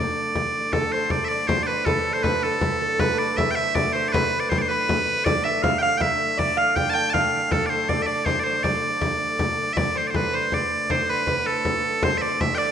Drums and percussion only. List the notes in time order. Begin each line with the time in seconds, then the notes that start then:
0.35 frame drum
0.73 frame drum
0.92 frame drum
1.10 frame drum
1.30 frame drum
1.49 frame drum
1.86 frame drum
2.05 frame drum
2.24 frame drum
2.43 frame drum
2.61 frame drum
2.99 frame drum
3.38 frame drum
3.58 frame drum
3.75 frame drum
4.14 frame drum
4.51 frame drum
4.70 frame drum
4.89 frame drum
5.08 frame drum
5.26 frame drum
5.64 frame drum
5.83 frame drum
6.01 frame drum
6.39 frame drum
6.58 frame drum
6.76 frame drum
6.95 frame drum
7.14 frame drum
7.51 frame drum
7.89 frame drum
8.07 frame drum
8.26 frame drum
8.64 frame drum
9.01 frame drum
9.20 frame drum
9.39 frame drum
9.77 frame drum
9.96 frame drum
10.14 frame drum
10.34 frame drum
10.52 frame drum
10.71 frame drum
10.90 frame drum
11.09 frame drum
11.27 frame drum
11.47 frame drum
11.65 frame drum
11.84 frame drum
12.03 frame drum
12.22 frame drum
12.41 frame drum
12.60 frame drum